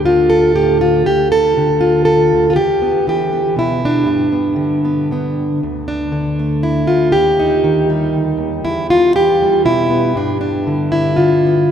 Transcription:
0.00 1.06 D2 medium
0.00 1.03 D4 soft
0.05 1.56 D3 medium
0.05 0.55 F4 loud
0.30 1.06 A4 loud
0.55 1.06 A2 medium
0.55 0.81 G4 loud
0.81 1.06 F4 loud
1.06 2.31 D2 medium
1.06 1.31 G4 loud
1.32 2.04 A4 loud
1.58 2.57 D3 medium
1.81 2.49 F4 loud
2.05 2.56 A4 loud
2.33 2.56 D2 medium
2.50 2.57 F4 medium
2.56 4.04 E2 medium
2.56 3.06 G4 loud
2.82 3.32 B3 soft
3.07 4.04 E3 medium
3.07 3.58 G4 medium
3.33 3.82 B3 medium
3.56 4.04 B2 medium
3.56 4.08 E4 loud
3.85 5.63 D4 medium
4.06 5.58 G2 medium
4.06 4.31 B3 medium
4.32 4.83 B3 soft
4.56 5.10 D3 medium
4.85 5.10 B3 soft
5.11 5.59 D3 medium
5.11 5.60 B3 soft
5.63 6.89 D2 medium
5.88 6.87 D4 medium
6.12 7.13 D3 medium
6.39 7.11 A3 soft
6.63 7.12 E4 medium
6.87 7.14 D2 medium
6.87 7.13 F4 medium
7.12 8.13 D#2 medium
7.12 7.88 G4 loud
7.39 8.64 D#4 medium
7.64 8.61 D#3 medium
7.90 9.42 G3 soft
8.13 8.37 D2 medium
8.38 8.63 D#2 medium
8.65 10.12 E2 medium
8.65 8.89 E4 loud
8.90 9.15 F4 loud
9.16 10.13 E3 medium
9.16 9.65 G4 loud
9.42 11.45 G3 medium
9.65 10.12 B2 medium
9.65 10.15 E4 loud
9.90 10.15 B3 soft
10.16 11.67 G2 medium
10.16 10.40 D4 medium
10.41 11.16 D4 medium
10.67 11.17 D3 medium
10.92 11.70 E4 medium
11.16 11.67 D3 medium
11.16 11.70 F4 medium
11.47 11.68 B3 soft

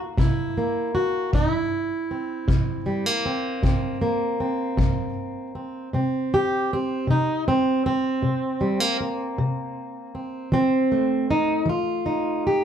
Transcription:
0.00 0.57 A#3 soft
0.00 0.19 E4 soft
0.17 0.87 C3 medium
0.17 0.94 E4 medium
0.17 kick medium
0.58 1.36 A#3 soft
0.95 1.33 F#4 medium
1.33 2.02 C3 medium
1.33 1.52 D#4 medium
1.33 kick medium
1.52 3.26 E4 medium
2.11 3.24 C4 soft
2.48 3.17 C3 medium
2.48 kick medium
2.86 3.06 G3 soft
3.06 4.00 A#3 soft
3.26 3.63 C4 soft
3.63 4.32 C3 medium
3.63 4.39 C4 soft
3.63 kick medium
4.02 5.88 A#3 soft
4.40 5.54 C4 soft
4.77 5.47 C3 medium
4.77 kick medium
5.55 5.89 C4 soft
5.93 6.62 C3 medium
5.93 6.73 C4 soft
6.34 6.71 G4 medium
6.73 7.10 C4 medium
7.07 7.77 C3 medium
7.07 7.47 D#4 medium
7.48 7.85 C4 medium
7.86 10.14 C4 medium
8.23 8.92 C3 medium
8.61 8.80 G3 soft
8.80 8.99 A#3 soft
9.01 10.48 A#3 medium
9.38 10.07 C3 medium
10.15 10.53 C4 soft
10.52 11.21 F3 medium
10.52 11.29 C4 medium
10.92 12.64 A3 soft
11.31 11.68 D#4 medium
11.66 12.35 F3 medium
11.66 12.45 F4 medium
12.06 12.64 D#4 soft
12.47 12.64 G4 medium

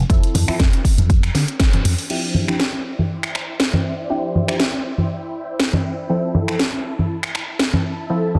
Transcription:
0.10 0.18 F2 loud
0.10 0.45 F3 medium
0.10 0.45 C4 medium
0.10 0.45 E4 medium
0.10 0.45 A4 medium
0.10 kick loud
0.10 closed hi-hat loud
0.10 tambourine medium
0.23 closed hi-hat soft
0.23 tambourine soft
0.34 0.43 F2 loud
0.34 open hi-hat loud
0.34 tambourine medium
0.34 high conga medium
0.48 0.56 F3 medium
0.48 0.56 C4 medium
0.48 0.56 E4 medium
0.48 0.56 A4 medium
0.48 finger snap medium
0.48 muted slap bass stroke soft
0.48 open hi-hat medium
0.48 tambourine soft
0.60 0.68 F2 medium
0.60 kick loud
0.60 snare loud
0.60 closed hi-hat loud
0.73 closed hi-hat soft
0.73 tambourine soft
0.85 kick medium
0.85 open hi-hat loud
0.85 tambourine medium
0.98 1.28 F2 medium
0.98 closed hi-hat soft
0.98 tambourine soft
0.98 high conga medium
1.10 kick loud
1.10 closed hi-hat medium
1.10 tambourine medium
1.23 finger snap medium
1.23 closed hi-hat soft
1.35 1.43 D3 medium
1.35 snare medium
1.35 open hi-hat loud
1.35 tambourine medium
1.48 closed hi-hat soft
1.48 tambourine soft
1.60 kick loud
1.60 snare loud
1.60 closed hi-hat loud
1.73 closed hi-hat soft
1.73 tambourine soft
1.73 high conga medium
1.85 1.93 F2 medium
1.85 open hi-hat loud
1.85 tambourine medium
1.98 open hi-hat medium
1.98 tambourine soft
2.09 2.45 F3 medium
2.09 2.45 C4 medium
2.09 2.45 D4 medium
2.09 8.39 E4 medium
2.09 2.45 E4 medium
2.09 2.45 G4 medium
2.09 6.06 C5 medium
2.09 6.06 D5 medium
2.09 6.06 E5 medium
2.09 6.06 G5 medium
2.09 crash medium
2.23 tambourine soft
2.34 tambourine medium
2.34 high conga medium
2.48 2.56 F3 medium
2.48 2.56 C4 medium
2.48 2.56 D4 medium
2.48 2.56 E4 medium
2.48 2.56 G4 medium
2.48 finger snap medium
2.60 snare loud
2.60 tambourine soft
2.73 tambourine soft
2.84 tambourine medium
2.98 tambourine soft
2.98 high conga medium
3.10 tambourine medium
3.23 finger snap medium
3.35 finger snap medium
3.60 snare loud
3.60 tambourine medium
3.73 tambourine soft
3.73 high conga medium
3.85 tambourine medium
3.98 tambourine soft
4.10 4.45 F3 medium
4.10 4.45 C4 medium
4.10 4.45 D4 medium
4.10 4.45 E4 medium
4.10 4.45 G4 medium
4.35 tambourine medium
4.35 high conga medium
4.48 4.56 F3 medium
4.48 4.56 C4 medium
4.48 4.56 D4 medium
4.48 4.56 E4 medium
4.48 4.56 G4 medium
4.48 finger snap medium
4.48 tambourine soft
4.60 snare loud
4.60 tambourine soft
4.74 tambourine soft
4.85 tambourine medium
4.98 tambourine soft
4.98 high conga medium
5.48 tambourine soft
5.60 snare loud
5.73 tambourine soft
5.73 high conga medium
5.84 tambourine medium
5.98 tambourine soft
6.09 6.45 F3 medium
6.09 6.45 C4 medium
6.09 6.45 E4 medium
6.09 6.45 A4 medium
6.09 8.39 E5 medium
6.09 8.39 A5 medium
6.23 tambourine soft
6.35 tambourine medium
6.35 high conga medium
6.48 6.56 F3 medium
6.48 6.56 C4 medium
6.48 6.56 E4 medium
6.48 6.56 A4 medium
6.48 finger snap medium
6.48 tambourine soft
6.59 snare loud
6.73 tambourine soft
6.85 tambourine medium
6.98 tambourine soft
6.98 high conga medium
7.10 tambourine soft
7.23 finger snap medium
7.35 finger snap medium
7.35 tambourine medium
7.48 tambourine soft
7.59 snare loud
7.59 tambourine soft
7.73 tambourine soft
7.73 high conga medium
7.84 tambourine medium
7.99 tambourine soft
8.09 8.39 F3 medium
8.09 8.39 C4 medium
8.09 8.39 E4 medium
8.09 8.39 A4 medium
8.24 tambourine soft
8.34 tambourine medium
8.34 high conga medium

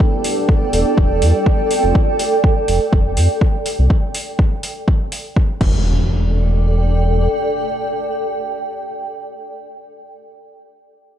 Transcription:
0.00 1.67 G3 medium
0.00 1.67 B3 medium
0.00 1.67 D4 medium
0.00 1.91 E4 medium
0.00 1.91 G4 medium
0.00 3.90 A4 loud
0.00 3.90 D5 medium
0.00 3.90 G5 medium
0.00 kick loud
0.24 open hi-hat loud
0.49 kick loud
0.73 0.84 E1 loud
0.73 open hi-hat medium
0.97 1.23 E1 medium
0.97 kick loud
1.22 1.33 E2 medium
1.22 open hi-hat loud
1.46 kick loud
1.71 1.95 A3 medium
1.71 1.95 C4 medium
1.71 1.95 F4 medium
1.71 open hi-hat medium
1.84 1.93 F1 medium
1.95 kick loud
2.19 open hi-hat loud
2.44 kick loud
2.68 2.79 F1 loud
2.68 open hi-hat medium
2.93 3.19 F1 medium
2.93 kick loud
3.17 3.28 F2 medium
3.17 open hi-hat loud
3.41 kick loud
3.66 open hi-hat medium
3.79 3.88 C2 medium
3.90 kick loud
4.15 open hi-hat loud
4.39 kick loud
4.63 open hi-hat medium
4.88 kick loud
5.12 open hi-hat loud
5.36 kick loud
5.61 7.28 E1 medium
5.61 8.89 A4 medium
5.61 kick loud
5.61 crash medium
5.61 impact medium
5.69 8.97 D5 medium
6.01 9.29 G5 medium

